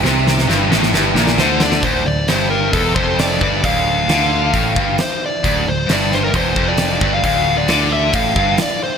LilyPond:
<<
  \new Staff \with { instrumentName = "Lead electric guitar" } { \time 4/4 \key d \minor \tempo 4 = 133 r2. c''8 d''8 | c''8 d''8 c''8 bes'8 a'8 c''8 d''8 d''8 | f''2. c''8 d''8~ | d''8 c''8 d''8 c''16 bes'16 c''8. d''4 f''16 |
f''8. d''16 d''8 e''8 f''4 d''8 c''8 | }
  \new Staff \with { instrumentName = "Overdriven electric guitar" } { \clef bass \time 4/4 \key d \minor c4 g,8 a,8 g,8 bes,8 d4 | r1 | r1 | r1 |
r1 | }
  \new Staff \with { instrumentName = "Distorted electric guitar" } { \clef bass \time 4/4 \key d \minor c4 g,8 a,8 g,8 bes,8 d4 | d,8 d,8 g,4 e,8 f,4 g,8 | d,4 d4 a,8 g,8 r4 | d,8 d,8 g,4 e,8 f,4 g,8 |
d,4 d4 a,8 g,8 r4 | }
  \new Staff \with { instrumentName = "Overdriven electric guitar" } { \clef bass \time 4/4 \key d \minor c4 g,8 a,8 g,8 bes,8 d4 | d,8 d,8 g,4 e,8 f,4 g,8 | d,4 d4 a,8 g,8 r4 | d,8 d,8 g,4 e,8 f,4 g,8 |
d,4 d4 a,8 g,8 r4 | }
  \new Staff \with { instrumentName = "Picked electric bass" } { \clef bass \time 4/4 \key d \minor c,4 g,,8 a,,8 g,,8 bes,,8 d,4 | d,,8 d,,8 g,,4 e,,8 f,,4 g,,8 | d,,4 d,4 a,,8 g,,8 r4 | d,,8 d,,8 g,,4 e,,8 f,,4 g,,8 |
d,,4 d,4 a,,8 g,,8 r4 | }
  \new DrumStaff \with { instrumentName = "Drums" } \drummode { \time 4/4 sn8 sn16 sn16 sn8 sn16 sn16 sn8 sn16 sn16 sn8 sn16 sn16 | <hho bd>4 <hho sn>4 <hho bd>8 bd8 <hho sn>8 bd8 | <hho bd>4 <hho sn>4 <hho bd>8 bd8 <hho sn>4 | <hho bd>4 <hho sn>8 sn8 <hho bd>8 bd8 <hho sn>8 bd8 |
<hho bd>4 <hho sn>4 <hho bd>8 bd8 <hho sn>4 | }
>>